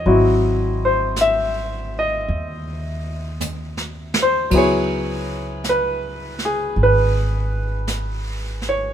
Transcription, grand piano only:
0, 0, Header, 1, 2, 480
1, 0, Start_track
1, 0, Key_signature, 5, "minor"
1, 0, Tempo, 1117318
1, 22, Time_signature, 4, 2, 24, 8
1, 3838, End_track
2, 0, Start_track
2, 0, Title_t, "Grand piano"
2, 0, Program_c, 0, 0
2, 0, Control_c, 0, 64, 127
2, 0, Note_on_c, 0, 75, 62
2, 26, Note_on_c, 0, 54, 40
2, 26, Note_on_c, 0, 60, 39
2, 28, Control_c, 0, 64, 0
2, 30, Note_on_c, 0, 64, 47
2, 31, Note_on_c, 0, 66, 41
2, 103, Control_c, 0, 64, 127
2, 365, Note_on_c, 0, 72, 60
2, 369, Note_off_c, 0, 75, 0
2, 502, Note_off_c, 0, 72, 0
2, 520, Note_on_c, 0, 76, 64
2, 812, Note_off_c, 0, 76, 0
2, 854, Note_on_c, 0, 75, 64
2, 1814, Note_on_c, 0, 72, 61
2, 1825, Note_off_c, 0, 75, 0
2, 1928, Note_off_c, 0, 54, 0
2, 1934, Note_on_c, 0, 54, 50
2, 1941, Note_off_c, 0, 60, 0
2, 1942, Note_on_c, 0, 59, 41
2, 1943, Note_off_c, 0, 64, 0
2, 1944, Note_off_c, 0, 66, 0
2, 1944, Control_c, 0, 64, 0
2, 1950, Note_on_c, 0, 64, 43
2, 1957, Note_on_c, 0, 68, 53
2, 1961, Note_off_c, 0, 72, 0
2, 1966, Note_on_c, 0, 73, 64
2, 2021, Control_c, 0, 64, 127
2, 2446, Note_off_c, 0, 73, 0
2, 2446, Note_on_c, 0, 71, 66
2, 2735, Note_off_c, 0, 71, 0
2, 2765, Note_off_c, 0, 68, 0
2, 2771, Note_on_c, 0, 68, 60
2, 2920, Note_off_c, 0, 68, 0
2, 2934, Note_on_c, 0, 71, 59
2, 3700, Note_off_c, 0, 71, 0
2, 3733, Note_on_c, 0, 73, 59
2, 3838, Note_off_c, 0, 54, 0
2, 3838, Note_off_c, 0, 59, 0
2, 3838, Note_off_c, 0, 64, 0
2, 3838, Note_off_c, 0, 73, 0
2, 3838, End_track
0, 0, End_of_file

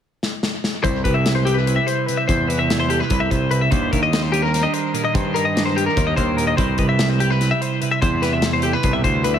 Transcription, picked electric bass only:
0, 0, Header, 1, 2, 480
1, 0, Start_track
1, 0, Tempo, 409556
1, 993, Time_signature, 7, 3, 24, 8
1, 11005, End_track
2, 0, Start_track
2, 0, Title_t, "Picked electric bass"
2, 0, Program_c, 0, 34
2, 996, Note_on_c, 0, 36, 83
2, 1207, Note_off_c, 0, 36, 0
2, 1233, Note_on_c, 0, 36, 76
2, 2083, Note_off_c, 0, 36, 0
2, 2684, Note_on_c, 0, 40, 81
2, 3529, Note_off_c, 0, 40, 0
2, 3641, Note_on_c, 0, 36, 83
2, 3850, Note_off_c, 0, 36, 0
2, 3883, Note_on_c, 0, 36, 76
2, 4303, Note_off_c, 0, 36, 0
2, 4359, Note_on_c, 0, 39, 80
2, 4568, Note_off_c, 0, 39, 0
2, 4608, Note_on_c, 0, 39, 77
2, 5451, Note_off_c, 0, 39, 0
2, 6034, Note_on_c, 0, 43, 87
2, 6884, Note_off_c, 0, 43, 0
2, 6999, Note_on_c, 0, 39, 91
2, 7209, Note_off_c, 0, 39, 0
2, 7236, Note_on_c, 0, 39, 78
2, 7659, Note_off_c, 0, 39, 0
2, 7718, Note_on_c, 0, 36, 81
2, 7928, Note_off_c, 0, 36, 0
2, 7957, Note_on_c, 0, 36, 78
2, 8805, Note_off_c, 0, 36, 0
2, 9405, Note_on_c, 0, 40, 88
2, 10250, Note_off_c, 0, 40, 0
2, 10362, Note_on_c, 0, 36, 79
2, 10571, Note_off_c, 0, 36, 0
2, 10600, Note_on_c, 0, 38, 74
2, 11005, Note_off_c, 0, 38, 0
2, 11005, End_track
0, 0, End_of_file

